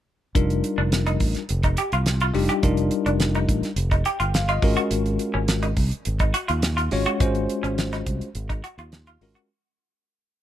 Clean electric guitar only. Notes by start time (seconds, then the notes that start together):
0.78 D4
1.07 D#4
1.64 D#4
1.78 G4
1.93 F4
2.22 F4
2.49 G4
3.06 D4
3.35 D#4
3.92 D#4
4.06 G4
4.20 F4
4.49 F4
4.77 F#4
5.34 C#4
5.63 D#4
6.20 D#4
6.34 F#4
6.48 F4
6.77 F4
7.06 F#4
7.63 C#4
7.93 D#4
8.49 D#4
8.64 F#4
8.79 F4
9.07 F4
9.35 F#4